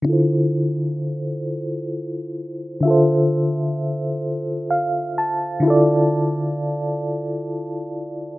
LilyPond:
\new Staff \with { instrumentName = "FM electric piano" } { \time 6/8 \key d \minor \tempo 4. = 43 << { r2. | r2 f''8 a''8 | r2. | } \\ { <d e' f' a' c''>2. | <d f' a' c'' e''>2. | <d e' f' a' d''>2. | } >> }